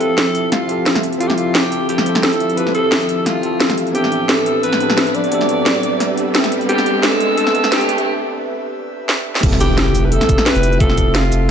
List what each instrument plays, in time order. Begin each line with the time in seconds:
Already playing: analog synth pad F3 G4 A4 E5, tine electric piano C4 E4 F4 G4 A4 E5, riser
0.00 alto saxophone A4, closed hi-hat
0.18 snare, closed hi-hat
0.35 closed hi-hat
0.52 alto saxophone F4, snare, closed hi-hat
0.66 tine electric piano C4 F4 E5, closed hi-hat
0.70 tine electric piano G4 A4
0.86 snare, closed hi-hat
0.95 snare, closed hi-hat
1.03 closed hi-hat
1.13 closed hi-hat
1.18 tine electric piano C4 E4 F4, alto saxophone F4, closed hi-hat
1.22 tine electric piano G4 A4
1.28 alto saxophone G4, snare
1.35 alto saxophone F4, closed hi-hat
1.54 alto saxophone G4, snare, closed hi-hat
1.72 closed hi-hat
1.89 alto saxophone G4, closed hi-hat
1.98 snare
2.03 tine electric piano C4 E4 F4, closed hi-hat
2.07 tine electric piano G4 A4
2.15 snare
2.23 alto saxophone A4, snare, closed hi-hat
2.32 closed hi-hat
2.40 closed hi-hat
2.50 closed hi-hat
2.55 tine electric piano C4 E4 F4, alto saxophone B4, closed hi-hat
2.59 tine electric piano G4 A4
2.67 snare
2.75 alto saxophone A4, closed hi-hat
2.92 snare, closed hi-hat
3.01 closed hi-hat
3.09 closed hi-hat
3.26 alto saxophone F4, snare, closed hi-hat
3.41 tine electric piano C4 F4 E5, closed hi-hat
3.45 tine electric piano G4 A4
3.60 snare, closed hi-hat
3.70 snare, closed hi-hat
3.78 closed hi-hat
3.87 closed hi-hat
3.92 analog synth pad A2 D4 B4, tine electric piano B3 C4 D4, alto saxophone G4, closed hi-hat
3.96 tine electric piano G4 A4
4.04 snare
4.12 closed hi-hat
4.29 alto saxophone A4, snare, closed hi-hat
4.46 closed hi-hat
4.63 alto saxophone B4, closed hi-hat
4.73 snare
4.78 tine electric piano B3 C4 D4, closed hi-hat
4.82 tine electric piano G4 A4
4.90 snare
4.98 snare, closed hi-hat
5.07 closed hi-hat
5.15 alto saxophone D5, closed hi-hat
5.24 closed hi-hat
5.29 tine electric piano B3 C4 D4, closed hi-hat
5.33 tine electric piano G4 A4
5.41 snare
5.49 closed hi-hat
5.66 snare, closed hi-hat
5.83 closed hi-hat
6.00 snare, closed hi-hat
6.15 tine electric piano B3 C4 D4, closed hi-hat
6.19 tine electric piano G4 A4
6.35 snare, closed hi-hat
6.44 snare, closed hi-hat
6.52 closed hi-hat
6.61 closed hi-hat
6.66 tine electric piano B3 C4 D4, alto saxophone G4, closed hi-hat
6.70 tine electric piano G4 A4
6.78 snare
6.86 closed hi-hat
7.03 alto saxophone A4, snare, closed hi-hat
7.20 closed hi-hat
7.38 alto saxophone A4, closed hi-hat
7.47 snare
7.52 tine electric piano B3 C4 D4 G4, closed hi-hat
7.57 tine electric piano A4
7.64 snare
7.72 alto saxophone G4, snare, closed hi-hat
7.81 closed hi-hat
7.89 closed hi-hat
7.98 closed hi-hat
9.09 snare
9.35 snare
9.41 sub bass F1, tine electric piano C4 E4 F4 G4, analog synth pad G4 A4 E5, kick, closed hi-hat, crash, impact
9.46 tine electric piano A4
9.52 snare
9.60 alto saxophone G4, closed hi-hat, shaker
9.69 sub bass F1
9.78 snare, closed hi-hat
9.95 sub bass F1, closed hi-hat, shaker
10.05 alto saxophone B4
10.12 alto saxophone A4, closed hi-hat
10.21 snare, closed hi-hat
10.26 sub bass F1, tine electric piano C4 E4 F4, kick, closed hi-hat, shaker
10.30 tine electric piano G4 A4
10.38 snare
10.46 alto saxophone B4, snare, closed hi-hat
10.55 sub bass F1, closed hi-hat
10.63 closed hi-hat, shaker
10.72 shaker
10.78 sub bass F1, tine electric piano C4 F4 E5, alto saxophone A4, kick, closed hi-hat
10.82 tine electric piano G4 A4
10.90 snare
10.98 kick, closed hi-hat, shaker
11.07 sub bass F1
11.15 alto saxophone F4, snare, closed hi-hat
11.32 sub bass F1, closed hi-hat, shaker